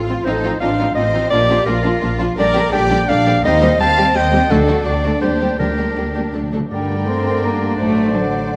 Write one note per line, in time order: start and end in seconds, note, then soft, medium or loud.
0.00 0.21 A1 medium
0.00 0.25 F4 medium
0.08 0.16 F3 medium
0.08 0.15 C4 medium
0.08 0.16 F4 medium
0.24 0.56 A1 medium
0.24 0.33 F3 medium
0.24 0.33 C4 medium
0.24 0.61 D#4 medium
0.24 0.33 D#4 medium
0.24 0.33 F4 medium
0.24 0.59 A4 medium
0.24 0.58 C5 medium
0.44 0.51 F3 medium
0.44 0.51 C4 medium
0.44 0.51 D#4 medium
0.44 0.51 F4 medium
0.60 0.92 A1 medium
0.60 0.68 F3 medium
0.60 0.68 C4 medium
0.60 0.96 D4 medium
0.60 0.67 D#4 medium
0.60 0.68 F4 medium
0.60 0.95 C5 medium
0.60 0.95 F5 medium
0.78 0.86 F3 medium
0.78 0.86 C4 medium
0.78 0.85 D#4 medium
0.78 0.86 F4 soft
0.95 1.27 A1 medium
0.95 1.03 F3 medium
0.95 1.03 C4 medium
0.95 1.31 C4 medium
0.95 1.03 D#4 medium
0.95 1.03 F4 medium
0.95 1.31 C5 medium
0.95 1.30 D#5 loud
1.13 1.21 F3 medium
1.13 1.21 C4 medium
1.13 1.21 D#4 medium
1.13 1.21 F4 medium
1.30 1.62 A#1 medium
1.30 1.39 F3 medium
1.30 1.40 A#3 medium
1.30 1.39 D4 medium
1.30 1.39 F4 medium
1.30 1.67 G4 medium
1.30 1.67 A#4 medium
1.30 1.66 D5 loud
1.49 1.57 F3 medium
1.49 1.57 A#3 medium
1.49 1.56 D4 medium
1.49 1.57 F4 medium
1.65 1.97 A#1 medium
1.65 1.75 F3 medium
1.65 1.75 A#3 medium
1.65 1.73 D4 medium
1.65 1.72 F4 medium
1.65 2.18 F4 medium
1.65 2.37 F4 medium
1.65 2.18 A#4 medium
1.83 1.92 F3 medium
1.83 1.92 A#3 medium
1.83 1.90 D4 medium
1.83 1.90 F4 medium
2.01 2.33 A#1 medium
2.01 2.10 F3 medium
2.01 2.09 A#3 medium
2.01 2.08 D4 medium
2.01 2.08 F4 medium
2.18 2.27 F3 medium
2.18 2.27 A#3 medium
2.18 2.26 D4 medium
2.18 2.26 F4 medium
2.36 2.68 A#1 medium
2.36 2.45 D3 medium
2.36 2.45 G3 medium
2.36 2.45 D4 medium
2.36 2.44 G4 medium
2.36 2.70 A#4 medium
2.36 2.72 A#4 medium
2.36 2.71 D5 loud
2.54 2.63 D3 medium
2.54 2.63 G3 medium
2.54 2.62 D4 medium
2.54 2.61 G4 medium
2.72 3.04 A#1 medium
2.72 2.81 D3 medium
2.72 2.80 G3 medium
2.72 2.79 D4 medium
2.72 3.08 G4 medium
2.72 2.80 G4 medium
2.72 3.07 D5 loud
2.72 3.10 G5 loud
2.88 2.98 D3 medium
2.88 2.97 G3 medium
2.88 2.96 D4 medium
2.88 2.96 G4 medium
3.08 3.39 A#1 medium
3.08 3.15 D3 medium
3.08 3.15 G3 medium
3.08 3.15 D4 medium
3.08 3.43 D4 medium
3.08 3.15 G4 medium
3.08 3.43 D5 loud
3.08 3.44 F5 loud
3.26 3.33 D3 medium
3.26 3.33 G3 medium
3.26 3.33 D4 medium
3.26 3.33 G4 medium
3.44 3.75 D#2 medium
3.44 3.51 G3 medium
3.44 3.52 C4 medium
3.44 3.79 D#4 medium
3.44 3.52 G4 loud
3.44 3.79 C5 loud
3.44 3.79 D#5 loud
3.61 3.69 G3 medium
3.61 3.69 C4 medium
3.61 3.69 G4 medium
3.79 4.11 D#2 medium
3.79 3.87 G3 medium
3.79 4.50 C4 medium
3.79 3.87 C4 medium
3.79 3.87 G4 medium
3.79 4.14 F5 loud
3.79 4.18 A5 loud
3.97 4.05 G3 medium
3.97 4.04 C4 medium
3.97 4.04 G4 medium
4.14 4.47 D#2 medium
4.14 4.23 G3 medium
4.14 4.22 C4 medium
4.14 4.22 G4 medium
4.14 4.50 D#5 medium
4.14 4.53 G5 loud
4.32 4.40 G3 medium
4.32 4.39 C4 medium
4.32 4.40 G4 medium
4.50 4.83 D2 medium
4.50 4.58 D3 medium
4.50 5.01 D3 medium
4.50 4.58 A3 medium
4.50 4.57 D4 medium
4.50 5.58 D4 medium
4.50 4.57 F#4 medium
4.50 4.87 F#4 medium
4.50 4.85 A4 loud
4.68 4.76 D3 medium
4.68 4.76 A3 medium
4.68 4.75 D4 medium
4.68 4.75 F#4 medium
4.85 5.19 D2 medium
4.85 4.94 D3 medium
4.85 4.95 A3 medium
4.85 4.93 D4 medium
4.85 4.92 F#4 medium
4.85 5.23 A4 medium
4.85 5.21 D5 medium
5.03 5.13 D3 medium
5.03 5.13 A3 medium
5.03 5.11 D4 medium
5.03 5.11 F#4 medium
5.21 5.56 D#2 medium
5.21 5.30 G3 medium
5.21 5.30 C4 medium
5.21 5.30 G4 medium
5.21 5.60 G4 medium
5.21 5.59 C5 medium
5.40 5.50 G3 medium
5.40 5.48 C4 soft
5.40 5.48 G4 soft
5.59 5.93 D2 medium
5.59 6.12 D3 medium
5.59 5.68 G3 medium
5.59 5.68 A#3 medium
5.59 5.67 D4 medium
5.59 6.52 D4 medium
5.59 5.67 G4 medium
5.59 6.34 G4 medium
5.59 6.33 A#4 medium
5.77 5.87 G3 soft
5.77 5.87 A#3 soft
5.77 5.85 D4 soft
5.77 5.85 G4 soft
5.96 6.31 D2 medium
5.96 6.06 G3 soft
5.96 6.05 A#3 soft
5.96 6.04 D4 soft
5.96 6.04 G4 soft
6.15 6.24 G3 soft
6.15 6.24 A#3 soft
6.15 6.23 D4 soft
6.15 6.23 G4 soft
6.33 6.68 D2 medium
6.33 6.42 D3 soft
6.33 6.42 F#3 soft
6.33 6.42 A3 soft
6.33 6.41 D4 soft
6.33 6.41 A4 soft
6.43 6.50 D3 soft
6.52 6.59 D3 medium
6.52 6.61 F#3 soft
6.52 6.61 A3 soft
6.52 6.60 D4 soft
6.52 6.60 A4 soft
6.60 6.66 D3 medium
6.71 7.74 G2 medium
6.71 7.04 D3 medium
6.71 8.56 D3 soft
6.71 7.05 G3 medium
6.71 8.56 D4 medium
6.71 7.79 A#4 medium
6.71 7.74 A#4 medium
6.71 8.56 D5 medium
6.71 7.74 G5 medium
6.71 7.05 G5 medium
7.07 7.42 A3 medium
7.07 7.43 C4 medium
7.07 7.42 C6 medium
7.42 7.78 G3 medium
7.42 7.78 A#3 medium
7.42 7.77 A#5 medium
7.77 8.56 A1 medium
7.77 8.13 F#3 medium
7.77 8.13 A3 medium
7.77 8.56 C5 medium
7.77 8.56 D5 medium
7.77 8.12 A5 medium
8.13 8.56 D3 medium
8.13 8.56 F#3 medium
8.13 8.56 F#5 medium